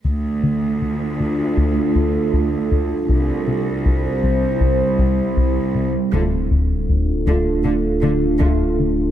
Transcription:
<<
  \new Staff \with { instrumentName = "Synth drone" } { \time 4/4 \key d \minor \tempo 4 = 79 <a d' f' a'>1 | <g c' e' c''>1 | <a d' f' a'>1 | }
  \new Staff \with { instrumentName = "Viola section" } { \time 4/4 \key d \minor r1 | r1 | <a f'>8 r4 <a f'>8 <a f'>8 <a f'>8 <a f'>8 r8 | }
  \new Staff \with { instrumentName = "Cello section" } { \clef bass \time 4/4 \key d \minor d,1 | c,2.~ c,8. r16 | d8 r4 d8 d8 d8 d8 r8 | }
  \new Staff \with { instrumentName = "Analog synth bass" } { \clef bass \time 4/4 \key d \minor d,8 d8 d,8 d,8 d,8 d,8 d,8 d,8 | c,8 c8 c,8 c,8 c,8 c,8 c,8 c,8 | d,8 d,8 d,8 d,8 d,8 d8 d,8 d8 | }
  \new Staff \with { instrumentName = "Sub bass" } { \clef bass \time 4/4 \key d \minor r1 | r1 | d,,1 | }
>>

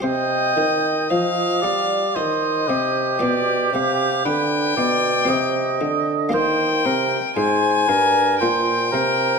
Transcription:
<<
  \new Staff \with { instrumentName = "Violin" } { \time 3/4 \key c \minor \tempo 4 = 58 ees''4 f''4 ees''4 | d''8 f''8 g''4.~ g''16 r16 | g''4 aes''4 g''4 | }
  \new Staff \with { instrumentName = "Oboe" } { \time 3/4 \key c \minor g''4 ees''8 d''8 c''8 g'8~ | g'4 b'8 d''8 ees''4 | c''8 bes'8 c''8 bes'8 c''8 bes'8 | }
  \new Staff \with { instrumentName = "Harpsichord" } { \time 3/4 \key c \minor <g' c''>2. | <g' d''>2 <c' g' ees''>4 | <bes g' ees''>2. | }
  \new Staff \with { instrumentName = "Harpsichord" } { \clef bass \time 3/4 \key c \minor c8 ees8 f8 g8 ees8 c8 | b,8 c8 d8 b,8 c8 d8 | ees8 c8 aes,8 g,8 bes,8 c8 | }
  \new Staff \with { instrumentName = "Bassoon" } { \clef bass \time 3/4 \key c \minor c8 ees8 f8 g8 ees8 c8 | b,8 c8 d8 b,8 c8 d8 | ees8 c8 aes,8 g,8 bes,8 c8 | }
>>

